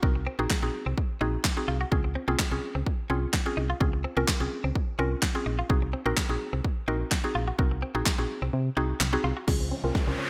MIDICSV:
0, 0, Header, 1, 9, 480
1, 0, Start_track
1, 0, Key_signature, -5, "major"
1, 0, Tempo, 472441
1, 28, Time_signature, 4, 2, 24, 8
1, 10463, End_track
2, 0, Start_track
2, 0, Title_t, "Synth arpeggio sound"
2, 0, Program_c, 0, 84
2, 9629, Note_on_c, 0, 56, 91
2, 9721, Note_off_c, 0, 56, 0
2, 9756, Note_on_c, 0, 60, 70
2, 9838, Note_off_c, 0, 60, 0
2, 9868, Note_on_c, 0, 61, 77
2, 9961, Note_off_c, 0, 61, 0
2, 9996, Note_on_c, 0, 65, 76
2, 10077, Note_off_c, 0, 65, 0
2, 10108, Note_on_c, 0, 68, 90
2, 10201, Note_off_c, 0, 68, 0
2, 10236, Note_on_c, 0, 72, 81
2, 10317, Note_off_c, 0, 72, 0
2, 10349, Note_on_c, 0, 73, 89
2, 10441, Note_off_c, 0, 73, 0
2, 10463, End_track
3, 0, Start_track
3, 0, Title_t, "Synth pluck"
3, 0, Program_c, 1, 84
3, 26, Note_on_c, 1, 60, 88
3, 28, Note_on_c, 1, 63, 78
3, 30, Note_on_c, 1, 66, 80
3, 31, Note_on_c, 1, 70, 99
3, 210, Note_off_c, 1, 60, 0
3, 211, Note_off_c, 1, 63, 0
3, 212, Note_off_c, 1, 66, 0
3, 213, Note_off_c, 1, 70, 0
3, 394, Note_on_c, 1, 60, 84
3, 396, Note_on_c, 1, 63, 81
3, 398, Note_on_c, 1, 66, 81
3, 399, Note_on_c, 1, 68, 93
3, 507, Note_off_c, 1, 60, 0
3, 508, Note_off_c, 1, 63, 0
3, 509, Note_off_c, 1, 66, 0
3, 510, Note_off_c, 1, 68, 0
3, 634, Note_on_c, 1, 60, 85
3, 636, Note_on_c, 1, 63, 79
3, 637, Note_on_c, 1, 66, 79
3, 639, Note_on_c, 1, 68, 94
3, 930, Note_off_c, 1, 60, 0
3, 931, Note_off_c, 1, 63, 0
3, 932, Note_off_c, 1, 66, 0
3, 933, Note_off_c, 1, 68, 0
3, 1226, Note_on_c, 1, 60, 91
3, 1229, Note_on_c, 1, 63, 84
3, 1230, Note_on_c, 1, 66, 81
3, 1232, Note_on_c, 1, 68, 100
3, 1411, Note_off_c, 1, 60, 0
3, 1412, Note_off_c, 1, 63, 0
3, 1412, Note_off_c, 1, 66, 0
3, 1413, Note_off_c, 1, 68, 0
3, 1593, Note_on_c, 1, 60, 95
3, 1595, Note_on_c, 1, 63, 87
3, 1597, Note_on_c, 1, 66, 85
3, 1599, Note_on_c, 1, 68, 105
3, 1770, Note_off_c, 1, 60, 0
3, 1771, Note_off_c, 1, 63, 0
3, 1772, Note_off_c, 1, 66, 0
3, 1773, Note_off_c, 1, 68, 0
3, 1946, Note_on_c, 1, 60, 94
3, 1948, Note_on_c, 1, 61, 81
3, 1949, Note_on_c, 1, 65, 80
3, 1951, Note_on_c, 1, 68, 99
3, 2130, Note_off_c, 1, 60, 0
3, 2131, Note_off_c, 1, 61, 0
3, 2132, Note_off_c, 1, 65, 0
3, 2133, Note_off_c, 1, 68, 0
3, 2313, Note_on_c, 1, 60, 85
3, 2315, Note_on_c, 1, 61, 78
3, 2316, Note_on_c, 1, 65, 77
3, 2318, Note_on_c, 1, 68, 99
3, 2427, Note_off_c, 1, 60, 0
3, 2428, Note_off_c, 1, 61, 0
3, 2429, Note_off_c, 1, 65, 0
3, 2429, Note_off_c, 1, 68, 0
3, 2553, Note_on_c, 1, 60, 85
3, 2555, Note_on_c, 1, 61, 79
3, 2557, Note_on_c, 1, 65, 79
3, 2558, Note_on_c, 1, 68, 96
3, 2850, Note_off_c, 1, 60, 0
3, 2851, Note_off_c, 1, 61, 0
3, 2852, Note_off_c, 1, 65, 0
3, 2852, Note_off_c, 1, 68, 0
3, 3146, Note_on_c, 1, 60, 91
3, 3147, Note_on_c, 1, 61, 82
3, 3149, Note_on_c, 1, 65, 85
3, 3151, Note_on_c, 1, 68, 97
3, 3330, Note_off_c, 1, 60, 0
3, 3331, Note_off_c, 1, 61, 0
3, 3332, Note_off_c, 1, 65, 0
3, 3333, Note_off_c, 1, 68, 0
3, 3513, Note_on_c, 1, 60, 96
3, 3515, Note_on_c, 1, 61, 86
3, 3516, Note_on_c, 1, 65, 88
3, 3518, Note_on_c, 1, 68, 107
3, 3690, Note_off_c, 1, 60, 0
3, 3691, Note_off_c, 1, 61, 0
3, 3692, Note_off_c, 1, 65, 0
3, 3693, Note_off_c, 1, 68, 0
3, 3865, Note_on_c, 1, 60, 91
3, 3867, Note_on_c, 1, 61, 83
3, 3869, Note_on_c, 1, 65, 81
3, 3870, Note_on_c, 1, 68, 97
3, 4050, Note_off_c, 1, 60, 0
3, 4051, Note_off_c, 1, 61, 0
3, 4052, Note_off_c, 1, 65, 0
3, 4053, Note_off_c, 1, 68, 0
3, 4233, Note_on_c, 1, 60, 87
3, 4234, Note_on_c, 1, 61, 81
3, 4236, Note_on_c, 1, 65, 77
3, 4238, Note_on_c, 1, 70, 97
3, 4347, Note_off_c, 1, 60, 0
3, 4347, Note_off_c, 1, 61, 0
3, 4348, Note_off_c, 1, 65, 0
3, 4349, Note_off_c, 1, 70, 0
3, 4473, Note_on_c, 1, 60, 91
3, 4475, Note_on_c, 1, 61, 81
3, 4476, Note_on_c, 1, 65, 79
3, 4478, Note_on_c, 1, 68, 96
3, 4770, Note_off_c, 1, 60, 0
3, 4771, Note_off_c, 1, 61, 0
3, 4771, Note_off_c, 1, 65, 0
3, 4772, Note_off_c, 1, 68, 0
3, 5066, Note_on_c, 1, 60, 91
3, 5068, Note_on_c, 1, 61, 87
3, 5070, Note_on_c, 1, 65, 83
3, 5071, Note_on_c, 1, 70, 105
3, 5250, Note_off_c, 1, 60, 0
3, 5251, Note_off_c, 1, 61, 0
3, 5252, Note_off_c, 1, 65, 0
3, 5253, Note_off_c, 1, 70, 0
3, 5433, Note_on_c, 1, 60, 94
3, 5435, Note_on_c, 1, 61, 87
3, 5436, Note_on_c, 1, 65, 91
3, 5438, Note_on_c, 1, 68, 102
3, 5610, Note_off_c, 1, 60, 0
3, 5611, Note_off_c, 1, 61, 0
3, 5612, Note_off_c, 1, 65, 0
3, 5613, Note_off_c, 1, 68, 0
3, 5786, Note_on_c, 1, 60, 87
3, 5788, Note_on_c, 1, 63, 83
3, 5789, Note_on_c, 1, 66, 82
3, 5791, Note_on_c, 1, 68, 98
3, 5970, Note_off_c, 1, 60, 0
3, 5971, Note_off_c, 1, 63, 0
3, 5972, Note_off_c, 1, 66, 0
3, 5973, Note_off_c, 1, 68, 0
3, 6153, Note_on_c, 1, 60, 90
3, 6155, Note_on_c, 1, 63, 78
3, 6156, Note_on_c, 1, 66, 80
3, 6158, Note_on_c, 1, 70, 97
3, 6267, Note_off_c, 1, 60, 0
3, 6268, Note_off_c, 1, 63, 0
3, 6269, Note_off_c, 1, 66, 0
3, 6269, Note_off_c, 1, 70, 0
3, 6393, Note_on_c, 1, 60, 90
3, 6395, Note_on_c, 1, 63, 79
3, 6396, Note_on_c, 1, 66, 78
3, 6398, Note_on_c, 1, 68, 98
3, 6690, Note_off_c, 1, 60, 0
3, 6691, Note_off_c, 1, 63, 0
3, 6691, Note_off_c, 1, 66, 0
3, 6692, Note_off_c, 1, 68, 0
3, 6987, Note_on_c, 1, 60, 90
3, 6989, Note_on_c, 1, 63, 85
3, 6990, Note_on_c, 1, 66, 87
3, 6992, Note_on_c, 1, 70, 102
3, 7171, Note_off_c, 1, 60, 0
3, 7172, Note_off_c, 1, 63, 0
3, 7172, Note_off_c, 1, 66, 0
3, 7173, Note_off_c, 1, 70, 0
3, 7353, Note_on_c, 1, 60, 97
3, 7355, Note_on_c, 1, 63, 83
3, 7357, Note_on_c, 1, 66, 89
3, 7358, Note_on_c, 1, 68, 108
3, 7530, Note_off_c, 1, 60, 0
3, 7531, Note_off_c, 1, 63, 0
3, 7532, Note_off_c, 1, 66, 0
3, 7533, Note_off_c, 1, 68, 0
3, 7707, Note_on_c, 1, 60, 88
3, 7708, Note_on_c, 1, 63, 85
3, 7710, Note_on_c, 1, 66, 83
3, 7712, Note_on_c, 1, 70, 98
3, 7891, Note_off_c, 1, 60, 0
3, 7891, Note_off_c, 1, 63, 0
3, 7892, Note_off_c, 1, 66, 0
3, 7893, Note_off_c, 1, 70, 0
3, 8074, Note_on_c, 1, 60, 83
3, 8075, Note_on_c, 1, 63, 81
3, 8077, Note_on_c, 1, 66, 81
3, 8078, Note_on_c, 1, 68, 95
3, 8187, Note_off_c, 1, 60, 0
3, 8188, Note_off_c, 1, 63, 0
3, 8189, Note_off_c, 1, 66, 0
3, 8190, Note_off_c, 1, 68, 0
3, 8314, Note_on_c, 1, 60, 84
3, 8315, Note_on_c, 1, 63, 80
3, 8317, Note_on_c, 1, 66, 78
3, 8319, Note_on_c, 1, 68, 96
3, 8610, Note_off_c, 1, 60, 0
3, 8611, Note_off_c, 1, 63, 0
3, 8612, Note_off_c, 1, 66, 0
3, 8613, Note_off_c, 1, 68, 0
3, 8907, Note_on_c, 1, 60, 93
3, 8908, Note_on_c, 1, 63, 85
3, 8910, Note_on_c, 1, 66, 81
3, 8912, Note_on_c, 1, 68, 97
3, 9091, Note_off_c, 1, 60, 0
3, 9091, Note_off_c, 1, 63, 0
3, 9092, Note_off_c, 1, 66, 0
3, 9093, Note_off_c, 1, 68, 0
3, 9273, Note_on_c, 1, 60, 96
3, 9274, Note_on_c, 1, 63, 86
3, 9277, Note_on_c, 1, 66, 89
3, 9278, Note_on_c, 1, 68, 104
3, 9450, Note_off_c, 1, 60, 0
3, 9451, Note_off_c, 1, 63, 0
3, 9452, Note_off_c, 1, 66, 0
3, 9453, Note_off_c, 1, 68, 0
3, 9626, Note_on_c, 1, 60, 88
3, 9628, Note_on_c, 1, 61, 78
3, 9630, Note_on_c, 1, 65, 78
3, 9632, Note_on_c, 1, 68, 98
3, 9811, Note_off_c, 1, 60, 0
3, 9811, Note_off_c, 1, 61, 0
3, 9812, Note_off_c, 1, 65, 0
3, 9813, Note_off_c, 1, 68, 0
3, 9994, Note_on_c, 1, 60, 81
3, 9995, Note_on_c, 1, 61, 75
3, 9997, Note_on_c, 1, 65, 74
3, 9999, Note_on_c, 1, 70, 93
3, 10107, Note_off_c, 1, 60, 0
3, 10108, Note_off_c, 1, 61, 0
3, 10109, Note_off_c, 1, 65, 0
3, 10110, Note_off_c, 1, 70, 0
3, 10234, Note_on_c, 1, 60, 83
3, 10235, Note_on_c, 1, 61, 76
3, 10238, Note_on_c, 1, 65, 76
3, 10239, Note_on_c, 1, 70, 93
3, 10463, Note_off_c, 1, 60, 0
3, 10463, Note_off_c, 1, 61, 0
3, 10463, Note_off_c, 1, 65, 0
3, 10463, Note_off_c, 1, 70, 0
3, 10463, End_track
4, 0, Start_track
4, 0, Title_t, "Clean electric guitar"
4, 0, Program_c, 2, 27
4, 270, Note_on_c, 2, 60, 72
4, 358, Note_off_c, 2, 60, 0
4, 397, Note_on_c, 2, 58, 75
4, 475, Note_off_c, 2, 58, 0
4, 510, Note_on_c, 2, 56, 72
4, 598, Note_off_c, 2, 56, 0
4, 877, Note_on_c, 2, 60, 69
4, 955, Note_off_c, 2, 60, 0
4, 1229, Note_on_c, 2, 63, 70
4, 1318, Note_off_c, 2, 63, 0
4, 1708, Note_on_c, 2, 65, 72
4, 1797, Note_off_c, 2, 65, 0
4, 1836, Note_on_c, 2, 66, 80
4, 1915, Note_off_c, 2, 66, 0
4, 2188, Note_on_c, 2, 60, 70
4, 2277, Note_off_c, 2, 60, 0
4, 2315, Note_on_c, 2, 58, 74
4, 2394, Note_off_c, 2, 58, 0
4, 2428, Note_on_c, 2, 56, 72
4, 2517, Note_off_c, 2, 56, 0
4, 2795, Note_on_c, 2, 60, 74
4, 2874, Note_off_c, 2, 60, 0
4, 3148, Note_on_c, 2, 61, 76
4, 3237, Note_off_c, 2, 61, 0
4, 3629, Note_on_c, 2, 63, 69
4, 3717, Note_off_c, 2, 63, 0
4, 3756, Note_on_c, 2, 65, 79
4, 3835, Note_off_c, 2, 65, 0
4, 4108, Note_on_c, 2, 60, 68
4, 4197, Note_off_c, 2, 60, 0
4, 4236, Note_on_c, 2, 58, 75
4, 4315, Note_off_c, 2, 58, 0
4, 4348, Note_on_c, 2, 56, 70
4, 4437, Note_off_c, 2, 56, 0
4, 4715, Note_on_c, 2, 60, 71
4, 4794, Note_off_c, 2, 60, 0
4, 5069, Note_on_c, 2, 61, 79
4, 5158, Note_off_c, 2, 61, 0
4, 5548, Note_on_c, 2, 63, 69
4, 5637, Note_off_c, 2, 63, 0
4, 5676, Note_on_c, 2, 65, 81
4, 5755, Note_off_c, 2, 65, 0
4, 6028, Note_on_c, 2, 60, 73
4, 6117, Note_off_c, 2, 60, 0
4, 6156, Note_on_c, 2, 58, 75
4, 6235, Note_off_c, 2, 58, 0
4, 6268, Note_on_c, 2, 56, 73
4, 6357, Note_off_c, 2, 56, 0
4, 6635, Note_on_c, 2, 60, 70
4, 6714, Note_off_c, 2, 60, 0
4, 6989, Note_on_c, 2, 63, 73
4, 7078, Note_off_c, 2, 63, 0
4, 7469, Note_on_c, 2, 65, 72
4, 7558, Note_off_c, 2, 65, 0
4, 7595, Note_on_c, 2, 66, 82
4, 7674, Note_off_c, 2, 66, 0
4, 7949, Note_on_c, 2, 60, 73
4, 8038, Note_off_c, 2, 60, 0
4, 8076, Note_on_c, 2, 58, 73
4, 8155, Note_off_c, 2, 58, 0
4, 8189, Note_on_c, 2, 56, 71
4, 8278, Note_off_c, 2, 56, 0
4, 8557, Note_on_c, 2, 60, 73
4, 8635, Note_off_c, 2, 60, 0
4, 8909, Note_on_c, 2, 63, 76
4, 8998, Note_off_c, 2, 63, 0
4, 9389, Note_on_c, 2, 65, 70
4, 9478, Note_off_c, 2, 65, 0
4, 9516, Note_on_c, 2, 66, 79
4, 9595, Note_off_c, 2, 66, 0
4, 9869, Note_on_c, 2, 60, 72
4, 9958, Note_off_c, 2, 60, 0
4, 9996, Note_on_c, 2, 58, 73
4, 10075, Note_off_c, 2, 58, 0
4, 10109, Note_on_c, 2, 56, 71
4, 10198, Note_off_c, 2, 56, 0
4, 10463, End_track
5, 0, Start_track
5, 0, Title_t, "String machine"
5, 0, Program_c, 3, 50
5, 9628, Note_on_c, 3, 56, 81
5, 9628, Note_on_c, 3, 65, 94
5, 9629, Note_on_c, 3, 49, 87
5, 9629, Note_on_c, 3, 53, 77
5, 9629, Note_on_c, 3, 72, 74
5, 10463, Note_off_c, 3, 49, 0
5, 10463, Note_off_c, 3, 53, 0
5, 10463, Note_off_c, 3, 56, 0
5, 10463, Note_off_c, 3, 65, 0
5, 10463, Note_off_c, 3, 72, 0
5, 10463, End_track
6, 0, Start_track
6, 0, Title_t, "FM bass"
6, 0, Program_c, 4, 39
6, 30, Note_on_c, 4, 36, 102
6, 285, Note_off_c, 4, 36, 0
6, 397, Note_on_c, 4, 34, 86
6, 475, Note_off_c, 4, 34, 0
6, 637, Note_on_c, 4, 34, 89
6, 715, Note_off_c, 4, 34, 0
6, 877, Note_on_c, 4, 36, 90
6, 955, Note_off_c, 4, 36, 0
6, 1230, Note_on_c, 4, 34, 92
6, 1397, Note_off_c, 4, 34, 0
6, 1708, Note_on_c, 4, 36, 91
6, 1876, Note_off_c, 4, 36, 0
6, 1949, Note_on_c, 4, 37, 101
6, 2205, Note_off_c, 4, 37, 0
6, 2316, Note_on_c, 4, 36, 91
6, 2394, Note_off_c, 4, 36, 0
6, 2556, Note_on_c, 4, 36, 94
6, 2634, Note_off_c, 4, 36, 0
6, 2796, Note_on_c, 4, 37, 87
6, 2874, Note_off_c, 4, 37, 0
6, 3148, Note_on_c, 4, 36, 91
6, 3316, Note_off_c, 4, 36, 0
6, 3628, Note_on_c, 4, 36, 85
6, 3796, Note_off_c, 4, 36, 0
6, 3869, Note_on_c, 4, 37, 101
6, 4125, Note_off_c, 4, 37, 0
6, 4235, Note_on_c, 4, 36, 93
6, 4314, Note_off_c, 4, 36, 0
6, 4475, Note_on_c, 4, 36, 91
6, 4554, Note_off_c, 4, 36, 0
6, 4715, Note_on_c, 4, 37, 97
6, 4794, Note_off_c, 4, 37, 0
6, 5068, Note_on_c, 4, 36, 89
6, 5236, Note_off_c, 4, 36, 0
6, 5549, Note_on_c, 4, 34, 88
6, 5716, Note_off_c, 4, 34, 0
6, 5789, Note_on_c, 4, 36, 109
6, 6045, Note_off_c, 4, 36, 0
6, 6155, Note_on_c, 4, 34, 89
6, 6234, Note_off_c, 4, 34, 0
6, 6397, Note_on_c, 4, 34, 89
6, 6475, Note_off_c, 4, 34, 0
6, 6636, Note_on_c, 4, 36, 89
6, 6715, Note_off_c, 4, 36, 0
6, 6989, Note_on_c, 4, 34, 91
6, 7156, Note_off_c, 4, 34, 0
6, 7469, Note_on_c, 4, 34, 87
6, 7636, Note_off_c, 4, 34, 0
6, 7709, Note_on_c, 4, 36, 106
6, 7965, Note_off_c, 4, 36, 0
6, 8076, Note_on_c, 4, 34, 94
6, 8154, Note_off_c, 4, 34, 0
6, 8316, Note_on_c, 4, 34, 86
6, 8394, Note_off_c, 4, 34, 0
6, 8556, Note_on_c, 4, 36, 84
6, 8635, Note_off_c, 4, 36, 0
6, 8670, Note_on_c, 4, 48, 107
6, 8836, Note_off_c, 4, 48, 0
6, 8909, Note_on_c, 4, 36, 88
6, 9076, Note_off_c, 4, 36, 0
6, 9148, Note_on_c, 4, 36, 101
6, 9316, Note_off_c, 4, 36, 0
6, 9388, Note_on_c, 4, 36, 97
6, 9477, Note_off_c, 4, 36, 0
6, 9629, Note_on_c, 4, 37, 102
6, 9885, Note_off_c, 4, 37, 0
6, 9996, Note_on_c, 4, 36, 88
6, 10074, Note_off_c, 4, 36, 0
6, 10236, Note_on_c, 4, 36, 93
6, 10314, Note_off_c, 4, 36, 0
6, 10463, End_track
7, 0, Start_track
7, 0, Title_t, "Riser"
7, 0, Program_c, 5, 103
7, 9629, Note_on_c, 5, 60, 84
7, 10463, Note_off_c, 5, 60, 0
7, 10463, End_track
8, 0, Start_track
8, 0, Title_t, "Muted clean electric guitar strokes"
8, 157, Note_on_c, 9, 29, 42
8, 258, Note_off_c, 9, 29, 0
8, 637, Note_on_c, 9, 29, 42
8, 738, Note_off_c, 9, 29, 0
8, 1469, Note_on_c, 9, 29, 42
8, 1570, Note_off_c, 9, 29, 0
8, 2075, Note_on_c, 9, 29, 43
8, 2177, Note_off_c, 9, 29, 0
8, 2555, Note_on_c, 9, 29, 44
8, 2657, Note_off_c, 9, 29, 0
8, 3388, Note_on_c, 9, 29, 42
8, 3490, Note_off_c, 9, 29, 0
8, 3996, Note_on_c, 9, 29, 45
8, 4097, Note_off_c, 9, 29, 0
8, 4476, Note_on_c, 9, 29, 43
8, 4577, Note_off_c, 9, 29, 0
8, 5309, Note_on_c, 9, 29, 41
8, 5410, Note_off_c, 9, 29, 0
8, 5916, Note_on_c, 9, 29, 43
8, 6017, Note_off_c, 9, 29, 0
8, 6396, Note_on_c, 9, 29, 45
8, 6497, Note_off_c, 9, 29, 0
8, 7229, Note_on_c, 9, 29, 43
8, 7331, Note_off_c, 9, 29, 0
8, 7837, Note_on_c, 9, 29, 41
8, 7938, Note_off_c, 9, 29, 0
8, 8316, Note_on_c, 9, 29, 43
8, 8418, Note_off_c, 9, 29, 0
8, 9149, Note_on_c, 9, 29, 42
8, 9251, Note_off_c, 9, 29, 0
8, 9756, Note_on_c, 9, 29, 40
8, 9858, Note_off_c, 9, 29, 0
8, 10236, Note_on_c, 9, 29, 45
8, 10338, Note_off_c, 9, 29, 0
8, 10463, End_track
9, 0, Start_track
9, 0, Title_t, "Drums"
9, 30, Note_on_c, 9, 36, 118
9, 131, Note_off_c, 9, 36, 0
9, 509, Note_on_c, 9, 36, 103
9, 510, Note_on_c, 9, 39, 105
9, 518, Note_on_c, 9, 38, 84
9, 611, Note_off_c, 9, 36, 0
9, 612, Note_off_c, 9, 39, 0
9, 620, Note_off_c, 9, 38, 0
9, 991, Note_on_c, 9, 36, 98
9, 1093, Note_off_c, 9, 36, 0
9, 1466, Note_on_c, 9, 36, 101
9, 1469, Note_on_c, 9, 39, 104
9, 1477, Note_on_c, 9, 38, 86
9, 1568, Note_off_c, 9, 36, 0
9, 1571, Note_off_c, 9, 39, 0
9, 1578, Note_off_c, 9, 38, 0
9, 1949, Note_on_c, 9, 36, 115
9, 2050, Note_off_c, 9, 36, 0
9, 2429, Note_on_c, 9, 36, 106
9, 2430, Note_on_c, 9, 39, 108
9, 2438, Note_on_c, 9, 38, 84
9, 2530, Note_off_c, 9, 36, 0
9, 2532, Note_off_c, 9, 39, 0
9, 2540, Note_off_c, 9, 38, 0
9, 2911, Note_on_c, 9, 36, 100
9, 3012, Note_off_c, 9, 36, 0
9, 3386, Note_on_c, 9, 36, 106
9, 3388, Note_on_c, 9, 39, 104
9, 3396, Note_on_c, 9, 38, 85
9, 3487, Note_off_c, 9, 36, 0
9, 3490, Note_off_c, 9, 39, 0
9, 3498, Note_off_c, 9, 38, 0
9, 3869, Note_on_c, 9, 36, 118
9, 3970, Note_off_c, 9, 36, 0
9, 4348, Note_on_c, 9, 36, 104
9, 4350, Note_on_c, 9, 39, 106
9, 4358, Note_on_c, 9, 38, 84
9, 4450, Note_off_c, 9, 36, 0
9, 4452, Note_off_c, 9, 39, 0
9, 4459, Note_off_c, 9, 38, 0
9, 4831, Note_on_c, 9, 36, 96
9, 4932, Note_off_c, 9, 36, 0
9, 5306, Note_on_c, 9, 36, 106
9, 5308, Note_on_c, 9, 39, 110
9, 5316, Note_on_c, 9, 38, 88
9, 5407, Note_off_c, 9, 36, 0
9, 5410, Note_off_c, 9, 39, 0
9, 5418, Note_off_c, 9, 38, 0
9, 5789, Note_on_c, 9, 36, 120
9, 5891, Note_off_c, 9, 36, 0
9, 6269, Note_on_c, 9, 36, 106
9, 6270, Note_on_c, 9, 39, 113
9, 6278, Note_on_c, 9, 38, 84
9, 6371, Note_off_c, 9, 36, 0
9, 6372, Note_off_c, 9, 39, 0
9, 6380, Note_off_c, 9, 38, 0
9, 6751, Note_on_c, 9, 36, 96
9, 6853, Note_off_c, 9, 36, 0
9, 7227, Note_on_c, 9, 36, 101
9, 7230, Note_on_c, 9, 39, 109
9, 7237, Note_on_c, 9, 38, 86
9, 7328, Note_off_c, 9, 36, 0
9, 7331, Note_off_c, 9, 39, 0
9, 7339, Note_off_c, 9, 38, 0
9, 7709, Note_on_c, 9, 36, 114
9, 7811, Note_off_c, 9, 36, 0
9, 8189, Note_on_c, 9, 36, 109
9, 8190, Note_on_c, 9, 39, 110
9, 8198, Note_on_c, 9, 38, 88
9, 8291, Note_off_c, 9, 36, 0
9, 8292, Note_off_c, 9, 39, 0
9, 8300, Note_off_c, 9, 38, 0
9, 9149, Note_on_c, 9, 39, 105
9, 9157, Note_on_c, 9, 38, 85
9, 9251, Note_off_c, 9, 39, 0
9, 9259, Note_off_c, 9, 38, 0
9, 9629, Note_on_c, 9, 36, 113
9, 9629, Note_on_c, 9, 38, 52
9, 9629, Note_on_c, 9, 49, 91
9, 9730, Note_off_c, 9, 38, 0
9, 9730, Note_off_c, 9, 49, 0
9, 9731, Note_off_c, 9, 36, 0
9, 10108, Note_on_c, 9, 38, 54
9, 10109, Note_on_c, 9, 36, 103
9, 10210, Note_off_c, 9, 38, 0
9, 10211, Note_off_c, 9, 36, 0
9, 10463, End_track
0, 0, End_of_file